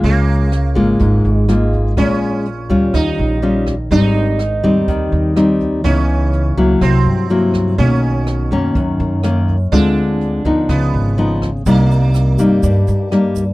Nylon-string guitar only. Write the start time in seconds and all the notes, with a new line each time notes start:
Already playing: G#3 A#3 F4
0.03 C#3
0.75 G#3 A#3 F4
1.00 G#2
1.48 G#3 A#3 F4
1.97 A#2 G#3 C#4 F4
2.70 G3 C#4 F4
2.94 D#3
3.42 G3 C#4 F4
3.92 G#2 G3 C4 D#4
4.64 G3 C4 D#4
4.88 D#3
5.37 G3 C4 D#4
5.84 C#3 E3 B3 D#4
6.57 F#3 A#3 E4
6.82 C3
7.30 F#3 A#3 E4
7.79 B2 D#3 A#3 C#4
8.52 D#3 A#3 C#4
8.76 F#2
9.24 D#3 A#3 C#4
9.73 D3 G#3 C4 F4
10.45 F3 B3 D#4
10.70 C#3
11.18 F3 B3 D#4
11.66 C3 G3 A#3 D#4
12.39 G3 A#3 D#4
12.64 G2
13.12 G3 A#3 D#4